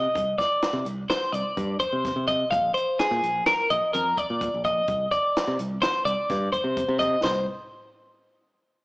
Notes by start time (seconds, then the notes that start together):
Already playing: D#5
0.15 C2, kick, closed hi-hat
0.38 D5, kick, snare, closed hi-hat
0.62 snare, closed hi-hat
0.73 C3
0.85 C2, closed hi-hat
1.10 C5, snare, closed hi-hat
1.33 C2 D5, closed hi-hat
1.57 G2, kick, closed hi-hat
1.80 C5, kick, closed hi-hat
1.93 C3
2.05 kick, snare, closed hi-hat
2.16 C3
2.28 D#5, kick, closed hi-hat
2.51 A#1 F5, kick, closed hi-hat
2.74 C5, closed hi-hat
2.99 G#4, snare, closed hi-hat
3.11 A#2
3.23 A#1, closed hi-hat
3.46 A#4, snare, closed hi-hat
3.70 A#1 D#5, closed hi-hat
3.93 F2 A#4, closed hi-hat
4.17 D5, kick, closed hi-hat
4.30 A#2
4.41 kick, closed hi-hat
4.54 A#1
4.65 D#5, kick, closed hi-hat
4.88 C2, kick, closed hi-hat
5.11 D5, kick, closed hi-hat
5.36 snare, closed hi-hat
5.48 C3
5.59 C2, closed hi-hat
5.82 C5, snare, closed hi-hat
6.05 C2 D5, closed hi-hat
6.30 G2, kick, snare, closed hi-hat
6.53 C5, kick, closed hi-hat
6.64 C3
6.77 kick, closed hi-hat
6.88 C3
6.99 D#5, kick, closed hi-hat
7.23 C2 C5, snare, floor tom